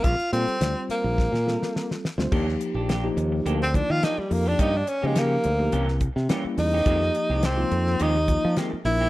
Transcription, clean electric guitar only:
X:1
M:4/4
L:1/16
Q:1/4=106
K:Bb
V:1 name="Clean electric guitar"
z16 | [K:Eb] [B,DG] z2 [DG] [B,DG] z3 [B,DG] z3 [B,DG] z2 [DG] | [F,B,_DG] z2 [B,DG] [F,B,DG] z3 [=E,B,DG] z3 [E,B,DG] z2 [B,DG] | [E,A,CG] z2 [A,CG] [E,A,CG] z3 [E,A,CG] z3 [E,A,CG] z2 [A,CG] |]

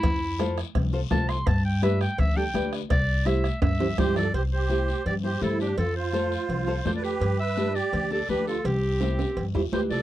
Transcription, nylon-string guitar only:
X:1
M:4/4
L:1/8
Q:1/4=167
K:C
V:1 name="Nylon-string guitar"
z2 [FAc] z2 [FAc] [FAc] z | z2 [DGB] z2 [DGA] [DGB] z | z2 [EGc] z2 [EGc] [EGd] z | z2 [EGc] z2 [EGc] [EGc] z |
z2 [FAc] z2 [FAc] [FAd] z | z2 [DGB] z2 [DGA] [DGB] z | z2 [EGc] z2 [EGc] [EGB] z |]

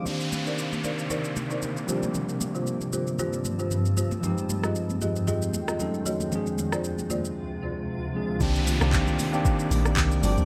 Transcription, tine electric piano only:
X:1
M:4/4
L:1/16
Q:"Swing 16ths" 1/4=115
K:Cm
V:1 name="Tine electric piano"
[E,B,CDG]12- [E,B,CDG]2 [F,G,CDG]2- | [F,G,CDG]12- [F,G,CDG]2 z2 | [F,A,CEG]12 [^F,=A,^C^D=A]4 | [F,A,CDA]12- [F,A,CDA]2 [F,A,CDA]2 |
[E,B,CDG]2 z [E,B,CDG]3 z [E,B,CDG]6 z [F,G,CD^FG]2 |]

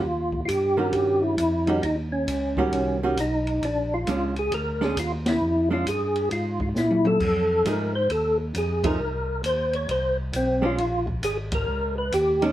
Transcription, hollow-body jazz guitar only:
X:1
M:4/4
L:1/8
Q:"Swing" 1/4=134
K:Eb
V:1 name="Hollow-body jazz guitar"
z3 [E,G,_D^F]3 z [E,G,DF] | z3 [E,G,_D^F]2 [E,G,DF] z2 | z2 [A,^CD] z2 [A,CD] z2 | z [A,^CD] z6 |
z2 [F,=A,E^G] z4 [F,A,EG] | z6 z [^G,_D=D] | z6 z [A,^CD] |]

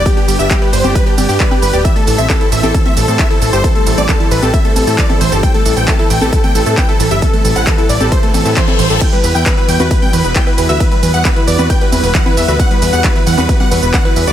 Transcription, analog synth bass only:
X:1
M:4/4
L:1/16
Q:1/4=134
K:Ador
V:1 name="Analog synth bass" clef=bass
z2 G,,, G,,, z2 G,,, G,,, z2 G,,, G,, z2 G,,, D,,, | z2 A,,, A,,, z2 A,,, A,,, z2 A,,, A,, z2 A,,, G,,, | z2 A,,, A,,, z2 A,,, A,,, z2 A,,, A,, z2 A,,, G,,, | z2 A,,, A,,, z2 A,,, A,,, z2 A,,, A,, z2 A,,, G,,, |
z2 A,,, A,,, z2 A,,, A,,, z2 A,,, A,, z2 A,,, A,,, | z2 E,, E,, z2 E,, E,, z2 E,, E,,, z2 E,, D,, | z2 E,, E,, z2 E,, E,, z2 E,, E,,, z2 E,, D,, | z2 E,, E,, z2 E,, E,, z2 E,, E,,, z2 E,, D,, |]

